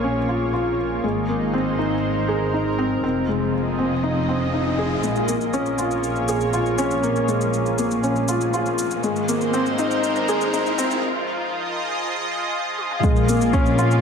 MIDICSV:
0, 0, Header, 1, 6, 480
1, 0, Start_track
1, 0, Key_signature, -5, "minor"
1, 0, Tempo, 500000
1, 994, Time_signature, 4, 2, 24, 8
1, 13450, End_track
2, 0, Start_track
2, 0, Title_t, "Analog synth pad"
2, 0, Program_c, 0, 89
2, 0, Note_on_c, 0, 58, 68
2, 0, Note_on_c, 0, 65, 71
2, 0, Note_on_c, 0, 68, 57
2, 0, Note_on_c, 0, 73, 73
2, 988, Note_on_c, 0, 56, 80
2, 995, Note_off_c, 0, 73, 0
2, 1048, Note_on_c, 0, 63, 71
2, 1383, Note_on_c, 0, 72, 64
2, 1649, Note_off_c, 0, 68, 0
2, 1711, Note_on_c, 0, 70, 75
2, 1760, Note_off_c, 0, 58, 0
2, 1762, Note_off_c, 0, 65, 0
2, 2910, Note_on_c, 0, 53, 78
2, 2911, Note_off_c, 0, 56, 0
2, 3254, Note_on_c, 0, 65, 70
2, 3277, Note_on_c, 0, 68, 67
2, 3365, Note_on_c, 0, 75, 85
2, 3664, Note_off_c, 0, 63, 0
2, 3681, Note_off_c, 0, 70, 0
2, 3681, Note_off_c, 0, 72, 0
2, 4830, Note_on_c, 0, 58, 69
2, 4832, Note_off_c, 0, 53, 0
2, 5478, Note_on_c, 0, 73, 71
2, 6368, Note_off_c, 0, 75, 0
2, 8675, Note_off_c, 0, 73, 0
2, 8676, Note_on_c, 0, 56, 73
2, 8836, Note_on_c, 0, 72, 72
2, 8888, Note_on_c, 0, 63, 64
2, 9223, Note_on_c, 0, 70, 80
2, 9440, Note_off_c, 0, 58, 0
2, 9441, Note_off_c, 0, 65, 0
2, 9441, Note_off_c, 0, 68, 0
2, 10593, Note_on_c, 0, 53, 78
2, 10595, Note_off_c, 0, 56, 0
2, 10665, Note_on_c, 0, 65, 82
2, 10961, Note_on_c, 0, 75, 78
2, 11198, Note_on_c, 0, 68, 70
2, 11361, Note_off_c, 0, 63, 0
2, 11361, Note_off_c, 0, 70, 0
2, 11363, Note_off_c, 0, 72, 0
2, 12509, Note_on_c, 0, 58, 89
2, 12513, Note_off_c, 0, 53, 0
2, 13120, Note_off_c, 0, 75, 0
2, 13393, Note_on_c, 0, 73, 72
2, 13450, Note_off_c, 0, 58, 0
2, 13450, Note_off_c, 0, 65, 0
2, 13450, Note_off_c, 0, 68, 0
2, 13450, Note_off_c, 0, 73, 0
2, 13450, End_track
3, 0, Start_track
3, 0, Title_t, "Felt piano"
3, 0, Program_c, 1, 0
3, 0, Control_c, 1, 64, 127
3, 0, Note_on_c, 1, 56, 55
3, 0, Note_on_c, 1, 58, 63
3, 0, Note_on_c, 1, 61, 80
3, 0, Note_on_c, 1, 65, 58
3, 0, Note_on_c, 1, 68, 60
3, 36, Note_off_c, 1, 61, 0
3, 36, Note_on_c, 1, 61, 68
3, 172, Note_off_c, 1, 61, 0
3, 276, Note_off_c, 1, 65, 0
3, 276, Note_on_c, 1, 65, 58
3, 498, Note_off_c, 1, 65, 0
3, 512, Note_on_c, 1, 65, 59
3, 741, Note_off_c, 1, 65, 0
3, 996, Note_off_c, 1, 56, 0
3, 996, Note_on_c, 1, 56, 58
3, 1006, Control_c, 1, 64, 0
3, 1010, Note_off_c, 1, 68, 0
3, 1015, Note_off_c, 1, 58, 0
3, 1181, Control_c, 1, 64, 127
3, 1223, Note_off_c, 1, 56, 0
3, 1236, Note_on_c, 1, 58, 58
3, 1463, Note_off_c, 1, 58, 0
3, 1474, Note_on_c, 1, 60, 85
3, 1702, Note_off_c, 1, 60, 0
3, 1716, Note_on_c, 1, 63, 67
3, 1852, Note_off_c, 1, 63, 0
3, 2193, Note_on_c, 1, 68, 60
3, 2421, Note_off_c, 1, 68, 0
3, 2436, Note_on_c, 1, 63, 60
3, 2572, Note_off_c, 1, 63, 0
3, 2674, Note_on_c, 1, 60, 84
3, 2900, Note_off_c, 1, 60, 0
3, 2915, Note_on_c, 1, 60, 78
3, 2927, Control_c, 1, 64, 0
3, 3095, Control_c, 1, 64, 127
3, 3142, Note_off_c, 1, 60, 0
3, 3154, Note_on_c, 1, 56, 57
3, 3382, Note_off_c, 1, 56, 0
3, 3635, Note_on_c, 1, 60, 67
3, 3771, Note_off_c, 1, 60, 0
3, 3875, Note_on_c, 1, 63, 68
3, 4011, Note_off_c, 1, 63, 0
3, 4117, Note_on_c, 1, 60, 83
3, 4343, Note_off_c, 1, 60, 0
3, 4356, Note_on_c, 1, 63, 63
3, 4583, Note_off_c, 1, 63, 0
3, 4596, Note_on_c, 1, 68, 67
3, 4732, Note_off_c, 1, 68, 0
3, 4834, Note_on_c, 1, 56, 60
3, 4844, Control_c, 1, 64, 0
3, 5004, Control_c, 1, 64, 127
3, 5062, Note_off_c, 1, 56, 0
3, 5073, Note_on_c, 1, 58, 60
3, 5302, Note_off_c, 1, 58, 0
3, 5313, Note_on_c, 1, 61, 89
3, 5542, Note_off_c, 1, 61, 0
3, 5555, Note_on_c, 1, 65, 67
3, 5691, Note_off_c, 1, 65, 0
3, 6035, Note_on_c, 1, 68, 68
3, 6262, Note_off_c, 1, 68, 0
3, 6274, Note_on_c, 1, 65, 65
3, 6410, Note_off_c, 1, 65, 0
3, 6513, Note_on_c, 1, 61, 87
3, 6741, Note_off_c, 1, 61, 0
3, 6752, Note_on_c, 1, 58, 86
3, 6981, Note_off_c, 1, 58, 0
3, 6991, Note_on_c, 1, 56, 69
3, 7221, Note_off_c, 1, 56, 0
3, 7472, Note_on_c, 1, 58, 71
3, 7610, Note_off_c, 1, 58, 0
3, 7713, Note_on_c, 1, 61, 71
3, 7850, Note_off_c, 1, 61, 0
3, 7954, Note_on_c, 1, 65, 65
3, 8181, Note_off_c, 1, 65, 0
3, 8195, Note_on_c, 1, 65, 70
3, 8423, Note_off_c, 1, 65, 0
3, 8675, Note_on_c, 1, 56, 69
3, 8684, Control_c, 1, 64, 0
3, 8836, Control_c, 1, 64, 127
3, 8902, Note_off_c, 1, 56, 0
3, 8915, Note_on_c, 1, 58, 68
3, 9143, Note_off_c, 1, 58, 0
3, 9154, Note_on_c, 1, 60, 95
3, 9382, Note_off_c, 1, 60, 0
3, 9396, Note_on_c, 1, 63, 75
3, 9532, Note_off_c, 1, 63, 0
3, 9876, Note_on_c, 1, 68, 73
3, 10103, Note_off_c, 1, 68, 0
3, 10114, Note_on_c, 1, 63, 68
3, 10251, Note_off_c, 1, 63, 0
3, 10351, Note_on_c, 1, 60, 94
3, 10580, Note_off_c, 1, 60, 0
3, 10605, Control_c, 1, 64, 0
3, 10802, Control_c, 1, 64, 127
3, 12515, Note_on_c, 1, 56, 71
3, 12525, Control_c, 1, 64, 0
3, 12680, Control_c, 1, 64, 127
3, 12743, Note_off_c, 1, 56, 0
3, 12756, Note_on_c, 1, 58, 72
3, 12983, Note_off_c, 1, 58, 0
3, 12993, Note_on_c, 1, 61, 102
3, 13221, Note_off_c, 1, 61, 0
3, 13236, Note_on_c, 1, 65, 82
3, 13372, Note_off_c, 1, 65, 0
3, 13450, End_track
4, 0, Start_track
4, 0, Title_t, "Double bass section"
4, 0, Program_c, 2, 48
4, 0, Note_on_c, 2, 34, 74
4, 970, Note_off_c, 2, 34, 0
4, 994, Note_on_c, 2, 32, 78
4, 2890, Note_off_c, 2, 32, 0
4, 2910, Note_on_c, 2, 29, 77
4, 4808, Note_off_c, 2, 29, 0
4, 4834, Note_on_c, 2, 34, 82
4, 8650, Note_off_c, 2, 34, 0
4, 8674, Note_on_c, 2, 32, 88
4, 10570, Note_off_c, 2, 32, 0
4, 12515, Note_on_c, 2, 34, 90
4, 13450, Note_off_c, 2, 34, 0
4, 13450, End_track
5, 0, Start_track
5, 0, Title_t, "Riser"
5, 0, Program_c, 3, 103
5, 991, Note_on_c, 3, 60, 64
5, 4832, Note_off_c, 3, 60, 0
5, 4832, Note_on_c, 3, 60, 67
5, 10593, Note_off_c, 3, 60, 0
5, 13450, End_track
6, 0, Start_track
6, 0, Title_t, "Drums"
6, 4833, Note_on_c, 9, 82, 37
6, 4929, Note_off_c, 9, 82, 0
6, 4952, Note_on_c, 9, 82, 18
6, 5048, Note_off_c, 9, 82, 0
6, 5072, Note_on_c, 9, 82, 65
6, 5168, Note_off_c, 9, 82, 0
6, 5193, Note_on_c, 9, 82, 27
6, 5289, Note_off_c, 9, 82, 0
6, 5313, Note_on_c, 9, 82, 38
6, 5409, Note_off_c, 9, 82, 0
6, 5432, Note_on_c, 9, 82, 19
6, 5528, Note_off_c, 9, 82, 0
6, 5551, Note_on_c, 9, 82, 64
6, 5647, Note_off_c, 9, 82, 0
6, 5673, Note_on_c, 9, 82, 27
6, 5769, Note_off_c, 9, 82, 0
6, 5793, Note_on_c, 9, 82, 36
6, 5889, Note_off_c, 9, 82, 0
6, 5911, Note_on_c, 9, 82, 17
6, 6007, Note_off_c, 9, 82, 0
6, 6030, Note_on_c, 9, 82, 61
6, 6126, Note_off_c, 9, 82, 0
6, 6151, Note_on_c, 9, 82, 26
6, 6247, Note_off_c, 9, 82, 0
6, 6271, Note_on_c, 9, 82, 37
6, 6367, Note_off_c, 9, 82, 0
6, 6392, Note_on_c, 9, 82, 17
6, 6488, Note_off_c, 9, 82, 0
6, 6511, Note_on_c, 9, 82, 69
6, 6607, Note_off_c, 9, 82, 0
6, 6631, Note_on_c, 9, 82, 27
6, 6727, Note_off_c, 9, 82, 0
6, 6752, Note_on_c, 9, 82, 38
6, 6848, Note_off_c, 9, 82, 0
6, 6873, Note_on_c, 9, 82, 19
6, 6969, Note_off_c, 9, 82, 0
6, 6991, Note_on_c, 9, 82, 69
6, 7087, Note_off_c, 9, 82, 0
6, 7114, Note_on_c, 9, 82, 30
6, 7210, Note_off_c, 9, 82, 0
6, 7233, Note_on_c, 9, 82, 38
6, 7329, Note_off_c, 9, 82, 0
6, 7353, Note_on_c, 9, 82, 21
6, 7449, Note_off_c, 9, 82, 0
6, 7471, Note_on_c, 9, 82, 66
6, 7567, Note_off_c, 9, 82, 0
6, 7593, Note_on_c, 9, 82, 30
6, 7689, Note_off_c, 9, 82, 0
6, 7712, Note_on_c, 9, 82, 36
6, 7808, Note_off_c, 9, 82, 0
6, 7832, Note_on_c, 9, 82, 19
6, 7928, Note_off_c, 9, 82, 0
6, 7950, Note_on_c, 9, 82, 71
6, 8046, Note_off_c, 9, 82, 0
6, 8072, Note_on_c, 9, 82, 30
6, 8168, Note_off_c, 9, 82, 0
6, 8193, Note_on_c, 9, 82, 40
6, 8289, Note_off_c, 9, 82, 0
6, 8312, Note_on_c, 9, 82, 20
6, 8408, Note_off_c, 9, 82, 0
6, 8432, Note_on_c, 9, 82, 73
6, 8528, Note_off_c, 9, 82, 0
6, 8552, Note_on_c, 9, 82, 31
6, 8648, Note_off_c, 9, 82, 0
6, 8672, Note_on_c, 9, 82, 38
6, 8768, Note_off_c, 9, 82, 0
6, 8793, Note_on_c, 9, 82, 20
6, 8889, Note_off_c, 9, 82, 0
6, 8914, Note_on_c, 9, 82, 75
6, 9010, Note_off_c, 9, 82, 0
6, 9034, Note_on_c, 9, 82, 32
6, 9130, Note_off_c, 9, 82, 0
6, 9154, Note_on_c, 9, 82, 42
6, 9250, Note_off_c, 9, 82, 0
6, 9274, Note_on_c, 9, 82, 22
6, 9370, Note_off_c, 9, 82, 0
6, 9393, Note_on_c, 9, 82, 67
6, 9489, Note_off_c, 9, 82, 0
6, 9513, Note_on_c, 9, 82, 31
6, 9609, Note_off_c, 9, 82, 0
6, 9634, Note_on_c, 9, 82, 42
6, 9730, Note_off_c, 9, 82, 0
6, 9753, Note_on_c, 9, 82, 21
6, 9849, Note_off_c, 9, 82, 0
6, 9872, Note_on_c, 9, 82, 68
6, 9968, Note_off_c, 9, 82, 0
6, 9994, Note_on_c, 9, 82, 32
6, 10090, Note_off_c, 9, 82, 0
6, 10114, Note_on_c, 9, 82, 44
6, 10210, Note_off_c, 9, 82, 0
6, 10236, Note_on_c, 9, 82, 21
6, 10332, Note_off_c, 9, 82, 0
6, 10354, Note_on_c, 9, 82, 79
6, 10450, Note_off_c, 9, 82, 0
6, 10473, Note_on_c, 9, 82, 33
6, 10569, Note_off_c, 9, 82, 0
6, 12273, Note_on_c, 9, 48, 65
6, 12369, Note_off_c, 9, 48, 0
6, 12394, Note_on_c, 9, 47, 76
6, 12490, Note_off_c, 9, 47, 0
6, 12514, Note_on_c, 9, 36, 106
6, 12516, Note_on_c, 9, 82, 44
6, 12610, Note_off_c, 9, 36, 0
6, 12612, Note_off_c, 9, 82, 0
6, 12635, Note_on_c, 9, 82, 20
6, 12731, Note_off_c, 9, 82, 0
6, 12755, Note_on_c, 9, 82, 70
6, 12851, Note_off_c, 9, 82, 0
6, 12876, Note_on_c, 9, 82, 31
6, 12972, Note_off_c, 9, 82, 0
6, 12994, Note_on_c, 9, 36, 104
6, 12994, Note_on_c, 9, 82, 43
6, 13090, Note_off_c, 9, 36, 0
6, 13090, Note_off_c, 9, 82, 0
6, 13114, Note_on_c, 9, 82, 23
6, 13210, Note_off_c, 9, 82, 0
6, 13233, Note_on_c, 9, 82, 68
6, 13329, Note_off_c, 9, 82, 0
6, 13354, Note_on_c, 9, 82, 29
6, 13450, Note_off_c, 9, 82, 0
6, 13450, End_track
0, 0, End_of_file